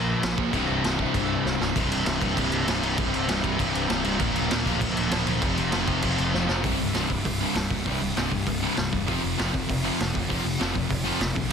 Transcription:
Already playing: A#1 A#2 F3 A#3
0.23 A#1, snare, crash
0.37 A#1 A#2 F3 A#3, kick
0.52 C1 C2 G2 C3, kick, crash
0.69 C1
0.84 C1, snare, crash
0.98 C2 G2 C3, kick
1.14 C1, kick, crash
1.45 C1, snare
1.58 C1 C2 G2 C3, snare
1.74 C1 C2 G2 C3, kick, crash
1.90 C1, crash
2.06 C1 C2 G2 C3, snare, crash
2.21 C1 C2 G2 C3, kick, crash
2.37 C1 C2 G2 C3, kick, crash
2.51 C1, crash
2.67 C1 C2 G2 C3, snare, crash
2.83 C1 C2 G2 C3, crash
2.97 C1 C2 G2 C3, kick, crash
3.13 C1, crash
3.28 C1 C2 G2 C3, snare, crash
3.43 C1 C2 G2 C3, kick, crash
3.58 C1 C2 G2 C3, kick, crash
3.74 C1, crash
3.89 C1 C2 G2 C3, snare, crash
4.04 C1 C2 G2 C3, crash
4.19 D1 A#2 F3 A#3, kick, crash
4.36 D1, crash
4.51 D1 A#2 F3 A#3, snare, crash
4.66 D1 A#2 F3 A#3, kick, crash
4.80 D1 A#2 F3 A#3, kick, crash
4.96 D1, crash
5.11 D1 A#2 F3 A#3, snare, crash
5.26 D1 A#2 F3 A#3, crash
5.41 F1 F2 C3 F3, kick, crash
5.57 F1, crash
5.72 F1 F2 C3 F3, snare, crash
5.86 F1 F2 C3 F3, kick, crash
6.02 F1 F2 C3 F3, kick, crash
6.18 F1, crash
6.33 F1 F2 C3 F3, snare
6.48 F1 F2 C3 F3, snare
6.63 C1 C2 G2 C3, kick, open hi-hat
6.79 C1 C2 G2
6.93 C1 C2 G2 C3, snare, open hi-hat
7.10 C1 C2 G2, kick
7.24 C1 C2 G2, kick, open hi-hat
7.40 C2 G2 C3
7.54 C1 C2 G2, snare, open hi-hat
7.70 C1 C2 G2, kick
7.85 C1 C2 G2 C3, kick, open hi-hat
8.01 C1 C2 G2
8.17 C1 C2 G2 C3, snare, open hi-hat
8.32 C1 C2 G2, kick
8.46 C1 C2 G2, kick, open hi-hat
8.63 C2 G2 C3
8.77 C1 C2 G2, snare, open hi-hat
8.93 E1 C2 G2, kick
9.07 F1 F2 C3 F3, kick, open hi-hat
9.22 F1 F2 C3
9.38 F1 F2 C3 F3, snare, open hi-hat
9.54 F1 F2 C3, kick
9.68 F1 F2 C3, kick, open hi-hat
9.84 F2 C3 F3
10.00 F1 F2 C3, snare, open hi-hat
10.15 F1 F2 C3, kick
10.30 F1 F2 C3 F3, kick, open hi-hat
10.45 F1 F2 C3
10.59 F1 F2 C3 F3, snare, open hi-hat
10.75 F1 F2 C3, kick
10.89 F1 F2 C3, kick, open hi-hat
11.04 F2 C3 F3
11.19 F1 F2 C3, snare, open hi-hat
11.35 A#1 F2 C3, kick
11.49 C2

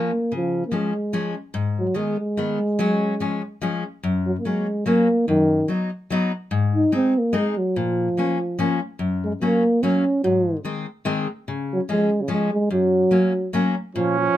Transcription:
Already playing: F3 A#3 C#4
0.32 C#3 F3
0.67 A#3
0.72 F3 G#3 C#4
1.13 F3 G#3 C#4
1.54 G#2
1.79 F#3
1.94 D#3 G#3 B3
2.20 G#3
2.37 D#3 G#3 B3
2.79 F#3 G#3 C#4
3.20 F3 G#3 C#4
3.62 F3 G#3 C#4
4.03 F#2
4.26 F#3
4.39 A#3
4.45 F#3 G#3 A#3 C#4
4.86 F#3 A#3 C#4
5.28 F#2 D#3
5.68 F#3 B3 D#4
6.10 F#3 B3 D#4
6.51 G#2
6.75 D#4
6.92 G#3 C4 D#4
7.18 A#3
7.33 G#3 C4 D#4
7.58 F#3
7.76 A#2 F3
8.17 F3 A#3 C#4
8.59 F3 A#3 C#4
8.99 F#2
9.24 G#3
9.41 F#3 A#3 C#4
9.83 F#3 A#3 C#4
10.24 G#2 F#3
10.65 D#3 G#3 C4
11.05 D#3 G#3 C4
11.48 C#3
11.73 F#3
11.89 F3 G#3 C#4
12.21 C#3
12.28 F3 G#3 C#4
12.53 G#3
12.70 F#2 F#3
13.11 F#3 A#3 C#4
13.53 F#3 A#3 C#4
13.95 A#2 F3 C#4
14.19 F3

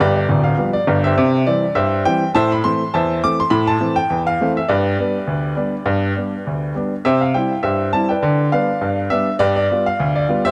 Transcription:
0.00 G1 G2 G4 B4 D5
0.16 D5
0.29 D1 D2
0.44 F5
0.58 F3 G3 B3
0.73 D5
0.87 G1 G2
1.04 G4 C5 E5
1.18 C3
1.47 E3 G3 C4 D5
1.75 G2 G4 C5 E5
2.05 E3 G3 C4 G5
2.35 A2 C5 E5 A5
2.52 B5
2.64 E3 A3 C4 C6
2.94 E2 C5 E5 A5
3.24 E3 A3 C4 D6
3.40 C6
3.50 A2 B5
3.67 A5
3.81 E3 A3 C4
3.96 G5
4.10 E2
4.27 F5
4.41 E3 A3 C4
4.57 E5
4.68 G2 G4 B4 D5
4.99 G3 B3 D4
5.27 D2
5.56 G3 B3 D4
5.86 G2
6.17 G3 B3 D4
6.47 D2
6.75 G3 B3 D4
7.05 C3 G4 C5 E5
7.21 F5
7.34 G3 C4 E4 G5
7.63 G2 G4 C5 E5
7.93 G3 C4 E4 A5
8.09 B4 D5 G5
8.23 D3
8.52 G3 B3 D4 B4 D5 F5
8.81 G2
9.10 G3 B3 D4 E5
9.39 G2 G4 B4 D5
9.56 D5
9.71 G3 B3 F4
9.86 F5
10.00 D2
10.16 D5
10.28 G3 B3 F4
10.45 G4 C5 E5

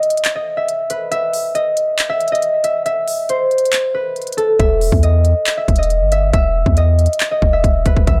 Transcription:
Already playing: D#5
0.03 closed hi-hat
0.10 closed hi-hat
0.17 closed hi-hat
0.25 clap, closed hi-hat
0.35 D#5
0.57 E5
0.69 closed hi-hat
0.90 B4, closed hi-hat
1.11 E5, closed hi-hat
1.33 open hi-hat
1.55 D#5, closed hi-hat
1.77 closed hi-hat
1.99 clap, closed hi-hat
2.09 E5
2.20 closed hi-hat
2.28 closed hi-hat
2.32 D#5, closed hi-hat
2.42 closed hi-hat
2.64 E5, closed hi-hat
2.86 E5, closed hi-hat
3.08 open hi-hat
3.29 C5, closed hi-hat
3.51 closed hi-hat
3.58 closed hi-hat
3.65 closed hi-hat
3.73 clap, closed hi-hat
3.94 B4
4.16 closed hi-hat
4.22 closed hi-hat
4.27 closed hi-hat
4.32 closed hi-hat
4.37 A4, closed hi-hat
4.59 E1 E5, kick, closed hi-hat
4.81 open hi-hat
4.92 E2, kick
5.03 D#5, closed hi-hat
5.25 closed hi-hat
5.46 clap, closed hi-hat
5.57 E5
5.68 E1, kick, closed hi-hat
5.76 D#5, closed hi-hat
5.83 closed hi-hat
5.90 closed hi-hat
6.01 G1
6.12 E5, closed hi-hat
6.33 E1 E5, kick, closed hi-hat
6.66 E2, kick
6.77 D#5, closed hi-hat
6.99 closed hi-hat
7.06 closed hi-hat
7.13 closed hi-hat
7.20 clap, closed hi-hat
7.31 D#5
7.42 E1, kick
7.53 E5
7.64 E1, kick, closed hi-hat
7.86 E1 B4, kick, closed hi-hat
7.97 kick
8.07 A1 E5, kick, closed hi-hat

